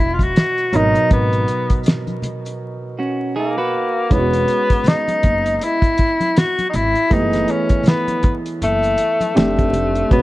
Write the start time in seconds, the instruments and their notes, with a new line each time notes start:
Already playing: grand piano B2 F#3 G#3 D#5, tenor saxophone E4
0.00 upright bass E1
0.14 tenor saxophone F4
0.19 tenor saxophone F#4, kick, closed hi-hat, high conga, maracas
0.36 snare, closed hi-hat, maracas
0.58 maracas
0.73 upright bass G#1, grand piano B2 F#3 D#4 A#4, tenor saxophone D#4, closed hi-hat, low conga, maracas
0.95 closed hi-hat, maracas
1.11 upright bass G#1, tenor saxophone B3, kick, closed hi-hat, maracas
1.32 closed hi-hat, maracas
1.48 closed hi-hat, maracas
1.70 kick, closed hi-hat, maracas
1.84 closed hi-hat, maracas
1.88 snare
2.07 high conga, maracas
2.22 closed hi-hat, low conga, maracas
2.46 closed hi-hat, maracas
2.99 clean electric guitar C#4 F#4
3.36 tenor saxophone A#3, clean electric guitar D#4 G#4
3.58 clean electric guitar F#4 B4
4.10 upright bass E1, grand piano G#3 B3 C#4 E4, tenor saxophone B3, kick, closed hi-hat, maracas
4.18 grand piano F#4
4.33 closed hi-hat, maracas
4.48 closed hi-hat, maracas
4.70 kick, closed hi-hat, maracas
4.84 closed hi-hat, low conga, maracas
4.88 tenor saxophone D#4, snare
5.08 closed hi-hat, high conga, maracas
5.23 upright bass F#1, kick, closed hi-hat, low conga, maracas
5.46 closed hi-hat, maracas
5.57 tenor saxophone D#4
5.61 tenor saxophone E4, closed hi-hat, maracas
5.82 kick, closed hi-hat, maracas
5.97 kick, closed hi-hat, maracas
6.21 closed hi-hat, high conga, maracas
6.36 tenor saxophone F#4, snare, closed hi-hat, maracas
6.59 closed hi-hat, high conga, maracas
6.69 tenor saxophone D#4, closed hi-hat
6.74 upright bass G#1, tenor saxophone E4, low conga, maracas
6.95 closed hi-hat, maracas
7.10 upright bass F#1, grand piano E3 A3 B3 G4, tenor saxophone D#4, kick, closed hi-hat, maracas
7.19 grand piano G#4
7.33 snare, closed hi-hat, maracas
7.48 tenor saxophone C#4, closed hi-hat, maracas
7.69 kick, closed hi-hat, maracas
7.84 closed hi-hat, low conga, maracas
7.88 tenor saxophone B3, snare
8.08 closed hi-hat, high conga, maracas
8.23 kick, closed hi-hat, low conga, maracas
8.46 closed hi-hat, maracas
8.62 upright bass F#1, tenor saxophone A3, closed hi-hat, maracas
8.83 closed hi-hat, maracas
8.97 closed hi-hat, maracas
9.21 closed hi-hat, high conga, maracas
9.35 upright bass F1, grand piano A3 C4 D4 G4, tenor saxophone A3, snare, closed hi-hat, maracas
9.58 kick, closed hi-hat, high conga, maracas
9.73 closed hi-hat, low conga, maracas
9.95 closed hi-hat, maracas
10.10 upright bass E1, grand piano G#3 B3 C#4 F#4, tenor saxophone B3, kick, closed hi-hat, maracas